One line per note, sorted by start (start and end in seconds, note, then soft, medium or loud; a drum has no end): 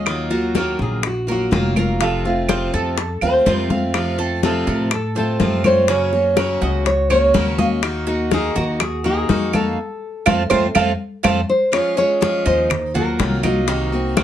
0.00 0.73 D#2 medium
0.00 0.30 D#5 medium
0.06 0.30 D#3 medium
0.06 0.30 F#3 medium
0.06 0.30 A#3 medium
0.06 0.29 F4 medium
0.06 high bongo medium
0.06 high conga soft
0.06 claves medium
0.30 0.54 F#3 soft
0.30 0.54 A#3 soft
0.30 0.54 F4 medium
0.30 0.54 F#4 medium
0.30 high bongo soft
0.30 high conga soft
0.55 1.02 D#3 medium
0.55 1.02 F#3 medium
0.55 1.02 A#3 medium
0.55 1.02 F4 medium
0.55 0.81 F#4 medium
0.55 0.79 A#4 medium
0.55 high bongo medium
0.55 high conga medium
0.79 1.48 A#1 medium
0.79 1.03 G#4 medium
0.79 high bongo soft
0.79 high conga soft
1.03 1.28 F#4 medium
1.03 muted steel-string acoustic guitar stroke medium
1.03 high bongo medium
1.03 high conga soft
1.03 claves medium
1.27 1.50 F#3 soft
1.27 1.51 A#3 soft
1.27 1.51 F4 soft
1.27 1.75 A#4 medium
1.27 high conga soft
1.31 1.78 F#4 medium
1.51 2.67 F1 medium
1.51 1.75 D#3 medium
1.51 1.75 F#3 medium
1.51 1.76 A#3 medium
1.51 1.75 F4 medium
1.51 high bongo soft
1.51 low bongo medium
1.51 high conga medium
1.76 2.00 F#3 soft
1.76 2.00 A#3 soft
1.76 1.99 F4 soft
1.76 2.00 A#4 medium
1.76 2.00 F5 medium
1.76 high bongo soft
1.76 high conga medium
1.76 claves medium
2.00 2.24 C3 medium
2.00 2.24 F3 medium
2.00 2.24 A3 medium
2.00 2.24 C4 medium
2.00 2.48 F4 medium
2.00 2.24 F4 medium
2.00 2.24 A4 loud
2.00 high bongo medium
2.00 high conga soft
2.24 2.48 A3 soft
2.24 2.49 C4 soft
2.24 2.48 F4 soft
2.24 2.70 F4 medium
2.24 high bongo soft
2.24 high conga soft
2.48 2.96 C3 medium
2.48 2.97 F3 medium
2.48 2.97 A3 medium
2.48 2.97 C4 medium
2.48 2.97 F4 medium
2.48 2.73 C5 medium
2.48 high bongo medium
2.48 high conga medium
2.48 claves medium
2.73 3.18 F2 medium
2.73 3.21 A4 medium
2.73 3.23 A4 medium
2.73 high bongo soft
2.73 high conga soft
2.98 muted steel-string acoustic guitar stroke medium
2.98 high bongo medium
2.98 high conga soft
3.21 3.44 D#2 medium
3.21 3.46 A3 soft
3.21 3.46 C4 soft
3.21 3.45 F4 soft
3.21 3.68 C5 medium
3.21 3.45 F5 medium
3.21 high conga soft
3.21 claves medium
3.46 4.61 F2 medium
3.46 3.69 C3 medium
3.46 3.70 F3 medium
3.46 3.70 A3 medium
3.46 3.69 C4 medium
3.46 3.68 F4 medium
3.46 3.70 C5 medium
3.46 high bongo soft
3.46 low bongo medium
3.46 high conga medium
3.70 3.94 A3 soft
3.70 3.94 C4 soft
3.70 3.93 F4 soft
3.70 4.17 F5 medium
3.70 high bongo soft
3.70 high conga medium
3.94 4.18 C3 medium
3.94 4.18 F3 medium
3.94 4.18 A3 medium
3.94 4.18 C4 medium
3.94 4.17 F4 medium
3.94 high bongo medium
3.94 high conga soft
3.94 claves medium
4.18 4.43 A3 soft
4.18 4.42 C4 soft
4.18 4.42 F4 soft
4.18 4.42 A4 medium
4.18 high bongo soft
4.18 high conga soft
4.43 4.90 C3 medium
4.43 4.90 F3 medium
4.43 4.91 A3 medium
4.43 4.91 C4 medium
4.43 4.91 F4 medium
4.43 4.66 A4 medium
4.43 4.67 C5 medium
4.43 high bongo soft
4.43 high conga medium
4.67 5.36 A2 medium
4.67 5.14 A4 medium
4.67 4.93 A#4 medium
4.67 high bongo soft
4.67 high conga soft
4.91 5.16 A4 medium
4.91 muted steel-string acoustic guitar stroke medium
4.91 high bongo medium
4.91 high conga soft
4.91 claves medium
5.15 5.39 A3 soft
5.15 5.39 C4 soft
5.15 5.39 F4 soft
5.15 5.66 A4 medium
5.15 5.63 C5 medium
5.15 high conga soft
5.40 6.55 F#2 medium
5.40 5.63 C3 medium
5.40 5.64 F3 medium
5.40 5.64 A3 medium
5.40 5.64 C4 medium
5.40 5.63 F4 medium
5.40 high bongo soft
5.40 low bongo medium
5.40 high conga medium
5.64 5.88 A3 soft
5.64 5.88 C4 soft
5.64 5.88 F4 soft
5.64 5.88 C5 medium
5.64 5.88 C#5 medium
5.64 high bongo soft
5.64 high conga medium
5.64 claves medium
5.88 6.12 C#3 medium
5.88 6.12 F#3 medium
5.88 6.12 A#3 medium
5.88 6.36 C#4 medium
5.88 6.13 C#4 medium
5.88 6.11 F#4 medium
5.88 high bongo medium
5.88 high conga soft
6.13 6.36 A#3 soft
6.13 6.37 C#4 soft
6.13 6.36 F#4 soft
6.13 high bongo soft
6.13 high conga soft
6.37 6.84 C#3 medium
6.37 6.85 F#3 medium
6.37 6.85 A#3 medium
6.37 6.85 C#4 medium
6.37 6.85 F#4 medium
6.37 6.61 A#4 medium
6.37 6.61 C#5 medium
6.37 high bongo medium
6.37 high conga medium
6.37 claves medium
6.61 7.31 C#2 medium
6.61 7.09 F#4 medium
6.61 6.69 D#5 medium
6.61 high bongo soft
6.61 high conga soft
6.86 7.09 C#5 medium
6.86 muted steel-string acoustic guitar stroke medium
6.86 high bongo medium
6.86 high conga soft
7.10 7.34 A#3 soft
7.10 7.34 C#4 soft
7.10 7.33 F#4 medium
7.10 7.34 C#5 medium
7.10 7.59 C#5 medium
7.10 high conga soft
7.10 claves medium
7.34 8.50 D#2 loud
7.34 7.58 C#3 medium
7.34 7.58 F#3 medium
7.34 7.58 A#3 medium
7.34 7.58 C#4 medium
7.34 7.57 F#4 medium
7.34 7.58 A#4 medium
7.34 high bongo soft
7.34 low bongo medium
7.34 high conga medium
7.58 7.82 A#3 soft
7.58 7.82 C#4 soft
7.58 7.82 F#4 soft
7.58 8.06 D#5 medium
7.58 7.66 F5 medium
7.58 high bongo soft
7.58 high conga medium
7.82 8.06 D#3 medium
7.82 8.06 A#3 medium
7.82 8.07 D#4 medium
7.82 8.06 F#4 medium
7.82 high bongo medium
7.82 high conga soft
7.82 claves medium
8.07 8.31 A#3 soft
8.07 8.31 D#4 soft
8.07 8.31 F#4 medium
8.07 8.31 F#4 soft
8.07 high bongo soft
8.07 high conga soft
8.31 8.79 D#3 medium
8.31 8.79 A#3 medium
8.31 8.80 D#4 medium
8.31 8.80 F#4 medium
8.31 8.57 G#4 loud
8.31 8.55 A#4 medium
8.31 high bongo medium
8.31 high conga medium
8.56 9.25 D#2 medium
8.56 9.03 F#4 medium
8.56 8.64 A#4 medium
8.56 high bongo soft
8.56 high conga soft
8.80 9.04 G#4 medium
8.80 muted steel-string acoustic guitar stroke medium
8.80 high bongo medium
8.80 high conga soft
8.80 claves medium
9.04 9.28 A#3 soft
9.04 9.29 D#4 soft
9.04 9.28 F#4 medium
9.04 9.54 G#4 medium
9.04 9.52 A#4 medium
9.04 high conga soft
9.29 9.75 F2 medium
9.29 9.53 D#3 medium
9.29 9.53 A#3 medium
9.29 9.53 D#4 medium
9.29 9.52 F#4 medium
9.29 high bongo soft
9.29 low bongo medium
9.29 high conga medium
9.53 9.78 A#3 soft
9.53 9.78 D#4 soft
9.53 9.77 F#4 soft
9.53 11.21 A4 medium
9.53 9.77 F5 medium
9.53 high bongo soft
9.53 high conga medium
9.53 claves medium
10.26 10.45 F2 medium
10.26 10.42 A3 loud
10.26 10.42 C4 medium
10.26 10.42 F4 medium
10.26 10.42 A4 medium
10.26 10.42 C5 medium
10.26 low bongo loud
10.26 high conga medium
10.26 claves loud
10.50 10.69 F2 loud
10.50 10.66 A3 medium
10.50 10.66 C4 medium
10.50 10.66 F4 loud
10.50 10.66 F4 medium
10.50 10.66 A4 medium
10.50 10.66 C5 medium
10.50 low bongo medium
10.50 high conga medium
10.50 claves loud
10.75 10.94 F2 medium
10.75 10.91 A3 medium
10.75 10.91 C4 medium
10.75 10.91 F4 loud
10.75 10.91 F4 medium
10.75 10.91 A4 medium
10.75 10.91 C5 medium
10.75 low bongo medium
10.75 high conga loud
10.75 claves loud
11.23 11.42 F2 loud
11.23 11.40 A3 medium
11.23 11.40 C4 medium
11.23 11.39 F4 medium
11.23 11.40 F4 medium
11.23 11.40 A4 medium
11.23 11.40 C5 medium
11.23 low bongo medium
11.23 high conga loud
11.23 claves medium
11.49 11.72 C5 medium
11.72 11.96 F3 medium
11.72 11.96 G#3 medium
11.72 11.96 C#4 medium
11.72 11.95 F4 medium
11.72 11.96 C#5 loud
11.72 high bongo medium
11.72 high conga soft
11.72 claves medium
11.97 12.20 G#3 soft
11.97 12.21 C#4 soft
11.97 12.21 F4 soft
11.97 12.45 G#4 medium
11.97 12.46 C#5 loud
11.97 high bongo soft
11.97 high conga soft
12.21 12.69 F3 medium
12.21 12.70 G#3 medium
12.21 12.70 C#4 medium
12.21 12.70 F4 medium
12.21 high bongo medium
12.21 high conga medium
12.46 13.15 D#2 medium
12.46 12.93 D#4 medium
12.46 12.96 C5 medium
12.46 high bongo soft
12.46 high conga soft
12.70 muted steel-string acoustic guitar stroke medium
12.70 high bongo medium
12.70 high conga soft
12.70 low conga medium
12.70 claves medium
12.94 13.18 F#3 soft
12.94 13.19 A#3 medium
12.94 13.18 F4 medium
12.94 13.42 F#4 medium
12.94 13.41 A#4 medium
12.94 high conga soft
12.94 low conga medium
13.19 14.23 C2 loud
13.19 13.43 D#3 medium
13.19 13.43 F#3 medium
13.19 13.43 A#3 medium
13.19 13.42 F4 medium
13.19 high bongo medium
13.19 low bongo medium
13.19 high conga medium
13.43 13.67 F#3 soft
13.43 13.67 A#3 soft
13.43 13.67 D#4 medium
13.43 13.67 F4 medium
13.43 14.23 F#4 medium
13.43 high bongo soft
13.43 high conga medium
13.43 claves medium
13.67 13.91 C3 medium
13.67 13.92 D#3 medium
13.67 13.92 A#3 medium
13.67 13.92 C4 medium
13.67 14.15 D#4 medium
13.67 13.91 F#4 medium
13.67 high bongo medium
13.67 high conga soft
13.92 14.17 A#3 soft
13.92 14.16 C4 medium
13.92 14.16 F#4 medium
13.92 high conga soft
14.17 14.23 C3 medium
14.17 14.23 D#3 medium
14.17 14.23 A#3 medium
14.17 14.23 C4 medium
14.17 14.23 F#4 medium
14.17 high bongo medium
14.17 high conga medium
14.17 claves medium